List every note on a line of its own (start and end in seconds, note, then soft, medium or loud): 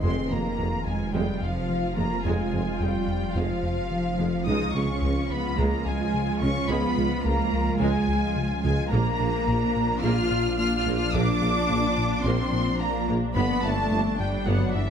0.02 0.14 F1 medium
0.02 4.48 F1 medium
0.02 0.10 F2 medium
0.02 0.20 F2 medium
0.02 4.44 C3 medium
0.02 4.44 F3 medium
0.02 0.29 G#3 soft
0.02 0.29 C4 medium
0.02 4.44 F4 medium
0.02 4.44 F4 soft
0.02 4.44 F5 medium
0.02 0.29 C6 medium
0.30 0.42 F1 soft
0.30 0.38 F2 soft
0.30 0.48 F3 medium
0.30 0.40 G#3 soft
0.30 0.86 A#3 medium
0.30 0.86 A#5 medium
0.30 0.86 A#5 soft
0.58 0.70 F1 soft
0.58 0.66 F2 soft
0.58 0.75 F2 medium
0.58 0.67 G#3 soft
0.85 1.03 F2 medium
0.85 1.13 G#3 soft
0.85 1.13 G#3 medium
0.85 1.14 G#5 soft
0.85 1.15 G#5 medium
1.13 1.25 F1 medium
1.13 1.31 F2 medium
1.13 1.22 F2 medium
1.13 1.41 G3 medium
1.13 1.42 G3 medium
1.13 1.40 G#3 medium
1.13 1.42 G5 medium
1.42 1.58 F2 medium
1.42 1.97 F3 medium
1.42 1.96 F3 medium
1.42 1.96 F5 medium
1.42 1.98 F5 medium
1.69 1.86 F3 medium
1.96 2.08 F1 soft
1.96 2.06 F2 soft
1.96 2.14 F3 medium
1.96 2.06 G#3 soft
1.96 2.24 A#3 medium
1.96 2.25 A#3 medium
1.96 2.24 A#5 medium
1.96 2.25 A#5 medium
2.23 2.36 F1 medium
2.23 2.42 F2 medium
2.23 2.33 F2 medium
2.23 2.79 G#3 medium
2.23 2.79 G#3 soft
2.23 2.51 G#3 medium
2.23 2.80 G#5 medium
2.23 2.80 G#5 soft
2.53 2.64 F1 soft
2.53 2.61 F2 soft
2.53 2.70 F3 medium
2.53 2.61 G#3 soft
2.80 2.92 F1 soft
2.80 2.88 F2 soft
2.80 2.97 F2 medium
2.80 3.35 G3 medium
2.80 3.37 G3 medium
2.80 2.89 G#3 soft
2.80 3.36 G5 medium
3.08 3.25 F2 medium
3.35 3.47 F1 medium
3.35 3.52 F2 medium
3.35 3.44 F2 medium
3.35 4.45 F3 medium
3.35 4.47 F3 medium
3.35 3.62 G#3 medium
3.35 4.47 F5 medium
3.35 4.48 F5 medium
3.63 3.80 F2 medium
3.91 4.08 F3 medium
4.18 4.30 F1 soft
4.18 4.27 F2 soft
4.18 4.35 F3 medium
4.18 4.27 G#3 soft
4.46 4.63 C#2 medium
4.46 8.93 C#2 medium
4.46 4.55 C#2 medium
4.46 4.58 C#2 medium
4.46 8.92 F3 medium
4.46 8.88 G#3 medium
4.46 4.74 G#3 medium
4.46 4.75 D#4 medium
4.46 4.74 D#4 medium
4.46 8.88 F4 medium
4.46 8.88 F5 medium
4.46 4.74 D#6 medium
4.74 4.83 C#2 soft
4.74 4.87 C#2 soft
4.74 4.91 C#3 medium
4.74 4.84 G#3 soft
4.74 5.30 C#4 medium
4.74 5.30 C#6 medium
4.74 5.31 C#6 medium
5.02 5.19 C#2 medium
5.02 5.10 C#2 soft
5.02 5.14 C#2 soft
5.02 5.12 G#3 soft
5.30 5.47 C#2 medium
5.30 5.59 B3 medium
5.30 5.58 B5 medium
5.58 5.69 C#2 medium
5.58 5.66 C#2 medium
5.58 5.75 C#2 medium
5.58 5.84 G#3 medium
5.58 5.86 A#3 medium
5.58 5.86 A#5 medium
5.58 5.87 A#5 medium
5.86 6.03 C#2 medium
5.86 6.42 G#3 medium
5.86 6.42 G#5 medium
6.14 6.31 C#3 medium
6.40 6.50 C#2 medium
6.40 6.53 C#2 soft
6.40 6.59 C#3 medium
6.40 6.50 G#3 medium
6.40 6.70 C#4 medium
6.40 6.68 C#6 medium
6.40 6.70 C#6 medium
6.69 6.77 C#2 medium
6.69 6.81 C#2 medium
6.69 6.86 C#2 medium
6.69 6.95 G#3 medium
6.69 7.25 B3 medium
6.69 7.26 B3 medium
6.69 7.25 B5 medium
6.69 7.26 B5 medium
6.97 7.05 C#2 soft
6.97 7.09 C#2 medium
6.97 7.14 C#3 medium
6.97 7.06 G#3 soft
7.24 7.32 C#2 medium
7.24 7.36 C#2 medium
7.24 7.42 C#2 medium
7.24 7.33 G#3 soft
7.24 7.81 A#3 medium
7.24 7.80 A#5 medium
7.24 7.81 A#5 medium
7.53 7.70 C#2 medium
7.80 7.88 C#2 medium
7.80 7.92 C#2 medium
7.80 7.98 C#2 medium
7.80 8.06 G#3 medium
7.80 8.63 G#3 medium
7.80 8.47 G#3 medium
7.80 8.62 G#5 medium
7.80 8.63 G#5 medium
8.08 8.25 C#2 medium
8.36 8.53 C#3 medium
8.63 8.72 C#2 medium
8.63 8.75 C#2 soft
8.63 8.81 C#3 medium
8.63 8.72 G#3 medium
8.63 8.91 G#3 medium
8.63 8.91 G#5 medium
8.90 13.38 A#1 medium
8.90 9.00 A#1 medium
8.90 9.03 A#1 medium
8.90 9.09 A#2 medium
8.90 13.33 F3 medium
8.90 9.17 A#3 medium
8.90 10.01 A#3 medium
8.90 10.03 A#3 medium
8.90 13.37 A#3 medium
8.90 13.32 D4 medium
8.90 13.33 F4 medium
8.90 13.35 D5 medium
8.90 10.00 A#5 medium
8.90 10.01 A#5 medium
9.20 9.28 A#1 soft
9.20 9.31 A#1 medium
9.20 9.36 A#3 medium
9.20 9.28 A#3 medium
9.47 9.56 A#1 medium
9.47 9.59 A#1 medium
9.47 9.64 A#2 medium
9.47 9.55 A#3 soft
9.76 9.92 A#2 medium
10.02 10.11 A#1 medium
10.02 10.14 A#1 medium
10.02 10.20 A#2 medium
10.02 10.29 A#3 medium
10.02 10.58 F4 medium
10.02 10.57 F4 medium
10.02 10.57 F6 loud
10.02 10.58 F6 medium
10.31 10.48 A#2 medium
10.59 10.75 A#3 medium
10.59 10.77 F4 medium
10.59 10.76 F4 medium
10.59 10.76 F6 loud
10.59 10.77 F6 medium
10.77 10.95 F4 medium
10.77 10.95 F6 medium
10.86 10.94 A#1 medium
10.86 10.98 A#1 soft
10.86 11.03 A#3 medium
10.86 10.95 A#3 medium
10.96 11.14 F4 medium
10.96 11.14 F6 medium
11.13 11.25 A#1 medium
11.13 11.22 A#1 medium
11.13 11.31 A#2 medium
11.13 11.40 A#3 medium
11.13 12.23 D4 medium
11.13 12.26 D4 medium
11.13 12.25 D6 medium
11.13 12.26 D6 medium
11.42 11.53 A#1 medium
11.42 11.50 A#1 soft
11.42 11.59 A#3 medium
11.42 11.51 A#3 soft
11.70 11.81 A#1 medium
11.70 11.78 A#1 medium
11.70 11.86 A#2 medium
11.70 11.79 A#3 medium
11.98 12.14 A#2 medium
12.24 12.33 A#1 medium
12.24 12.36 A#1 medium
12.24 12.42 A#2 medium
12.24 12.52 A#3 medium
12.24 12.81 C4 medium
12.24 12.80 C6 medium
12.24 12.79 C6 medium
12.53 12.70 A#2 medium
12.80 12.97 A#3 medium
12.80 13.09 A#3 medium
12.80 13.08 A#5 medium
13.08 13.16 A#1 medium
13.08 13.20 A#1 soft
13.08 13.25 A#3 medium
13.08 13.18 A#3 medium
13.35 13.47 G1 medium
13.35 13.44 G1 medium
13.35 14.90 G1 medium
13.35 13.53 G2 medium
13.35 14.90 G3 medium
13.35 14.90 B3 medium
13.35 13.62 B3 medium
13.35 14.90 D4 medium
13.35 14.90 D5 medium
13.35 13.62 B5 medium
13.63 13.75 G1 medium
13.63 13.72 G1 soft
13.63 13.81 G3 medium
13.63 14.19 A3 medium
13.63 14.20 A3 medium
13.63 13.72 B3 soft
13.63 14.19 A5 medium
13.63 14.20 A5 medium
13.92 14.03 G1 medium
13.92 14.00 G1 medium
13.92 14.08 G2 medium
13.92 14.00 B3 soft
14.19 14.36 G2 medium
14.19 14.47 G3 medium
14.19 14.48 G3 medium
14.19 14.46 G5 medium
14.19 14.47 G5 medium
14.46 14.58 G1 medium
14.46 14.55 G1 medium
14.46 14.64 G2 medium
14.46 14.74 F#3 medium
14.46 14.75 F#3 medium
14.46 14.73 B3 medium
14.46 14.75 F#5 medium
14.75 14.90 G2 medium
14.75 14.90 E3 medium
14.75 14.90 E5 medium